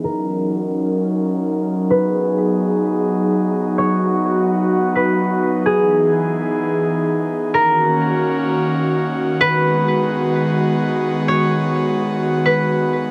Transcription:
Already playing: analog synth pad D#4, harp G#4
0.03 analog synth pad F#3 C#4 A#4, harp A#4
1.90 analog synth pad B3 G#4, harp B4
3.78 analog synth pad F#4, harp C#5
4.95 harp B4
5.66 analog synth pad E3 G#4, harp G#4
7.53 analog synth pad D#3 A#3 C#4 F#4, harp A#4
9.41 analog synth pad G#3 B3, harp B4
11.28 harp C#5
12.45 harp B4

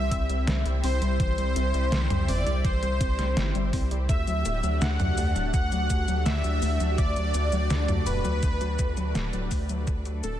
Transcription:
Already playing: analog synth bass C2, analog synth pad G3 C4 E4 C5 E5, supersaw synth E5, digital synth lead E6
0.11 analog synth bass C2, synth arpeggio sound C4, kick, closed hi-hat
0.30 analog synth bass C2, synth arpeggio sound G3, closed hi-hat
0.47 analog synth bass C2, synth arpeggio sound E3, snare, closed hi-hat
0.66 analog synth bass C2, synth arpeggio sound G3, closed hi-hat
0.84 analog synth bass C2, synth arpeggio sound C4, supersaw synth C5, digital synth lead C6, open hi-hat
1.02 analog synth bass C2, synth arpeggio sound G3, closed hi-hat
1.20 analog synth bass C2, synth arpeggio sound E3, analog synth pad G4, supersaw synth C5, digital synth lead C6, kick, closed hi-hat
1.38 analog synth bass C2, synth arpeggio sound G3, closed hi-hat
1.56 analog synth bass C2, synth arpeggio sound C4, closed hi-hat
1.74 analog synth bass C2, synth arpeggio sound G3, closed hi-hat
1.92 analog synth bass C2, synth arpeggio sound E3, snare, closed hi-hat
2.10 analog synth bass C2, synth arpeggio sound G3, closed hi-hat, mid tom
2.28 analog synth bass G1, synth arpeggio sound C4, supersaw synth D5, digital synth lead D6, open hi-hat
2.46 analog synth bass C2, synth arpeggio sound G3, closed hi-hat
2.65 analog synth bass C2, synth arpeggio sound E3, supersaw synth C5, digital synth lead C6, kick, closed hi-hat
2.83 analog synth bass C2, synth arpeggio sound G3, closed hi-hat
3.01 analog synth bass C2, synth arpeggio sound C4, kick, closed hi-hat
3.19 analog synth bass C2, synth arpeggio sound G3, snare, closed hi-hat
3.37 analog synth bass G1, synth arpeggio sound E3, snare, closed hi-hat
3.55 analog synth bass G1, synth arpeggio sound G3, closed hi-hat
3.73 analog synth bass C2, synth arpeggio sound C4, kick, open hi-hat
3.91 analog synth bass C2, synth arpeggio sound G3, closed hi-hat
4.09 analog synth bass D2, synth arpeggio sound D3, analog synth pad A3 D4 F#4 D5, supersaw synth E5, digital synth lead E6, kick, closed hi-hat, shaker
4.27 analog synth bass D2, synth arpeggio sound F#3, closed hi-hat, shaker
4.46 analog synth bass D1, synth arpeggio sound A3, closed hi-hat, shaker
4.63 analog synth bass D2, synth arpeggio sound F#3, closed hi-hat, shaker
4.81 analog synth bass D2, synth arpeggio sound D3, supersaw synth F#5, digital synth lead F#6, snare, closed hi-hat, shaker
5.00 analog synth bass D2, synth arpeggio sound F#3, closed hi-hat, mid tom, shaker
5.18 analog synth bass D2, synth arpeggio sound A3, open hi-hat, shaker
5.36 analog synth bass D1, synth arpeggio sound F#3, closed hi-hat, shaker
5.53 analog synth bass D2, synth arpeggio sound D3, supersaw synth F#5, digital synth lead F#6, kick, closed hi-hat, shaker
5.72 analog synth bass D2, synth arpeggio sound F#3, closed hi-hat, shaker
5.90 analog synth bass D2, synth arpeggio sound A3, kick, closed hi-hat, shaker
6.08 analog synth bass D2, synth arpeggio sound F#3, closed hi-hat, shaker
6.25 analog synth bass D2, synth arpeggio sound D3, supersaw synth E5, digital synth lead E6, snare, closed hi-hat, shaker
6.44 analog synth bass D2, synth arpeggio sound F#3, closed hi-hat, shaker
6.62 analog synth bass D2, synth arpeggio sound A3, open hi-hat, shaker
6.80 analog synth bass D2, synth arpeggio sound F#3, closed hi-hat, shaker
6.98 analog synth bass D2, synth arpeggio sound D3, supersaw synth D5, digital synth lead D6, kick, closed hi-hat, shaker
7.16 analog synth bass D2, synth arpeggio sound F#3, closed hi-hat, shaker
7.34 analog synth bass D2, synth arpeggio sound A3, closed hi-hat, shaker
7.52 analog synth bass D2, synth arpeggio sound F#3, closed hi-hat, shaker
7.70 analog synth bass D2, synth arpeggio sound D3, snare, closed hi-hat, shaker
7.88 analog synth bass D2, synth arpeggio sound F#3, closed hi-hat, mid tom, shaker
8.06 analog synth bass D1, synth arpeggio sound A3, supersaw synth B4, digital synth lead B5, open hi-hat, shaker
8.25 analog synth bass D2, synth arpeggio sound F#3, closed hi-hat, shaker
8.43 analog synth bass D2, synth arpeggio sound D3, kick, closed hi-hat, shaker
8.61 analog synth bass D2, synth arpeggio sound F#3, closed hi-hat, shaker
8.79 analog synth bass D2, synth arpeggio sound A3, kick, closed hi-hat, shaker
8.97 analog synth bass D2, synth arpeggio sound F#3, closed hi-hat, shaker
9.15 analog synth bass D1, synth arpeggio sound D3, snare, closed hi-hat, shaker
9.33 analog synth bass D1, synth arpeggio sound F#3, closed hi-hat, shaker
9.51 analog synth bass D2, synth arpeggio sound A3, kick, open hi-hat, shaker
9.69 analog synth bass D2, synth arpeggio sound F#3, closed hi-hat, shaker
9.87 analog synth bass D2, synth arpeggio sound D3, analog synth pad F#3 A4, kick, closed hi-hat, shaker
10.05 analog synth bass D2, synth arpeggio sound F#3, closed hi-hat, shaker
10.23 analog synth bass D1, synth arpeggio sound A3, supersaw synth A4, digital synth lead A5, closed hi-hat, shaker

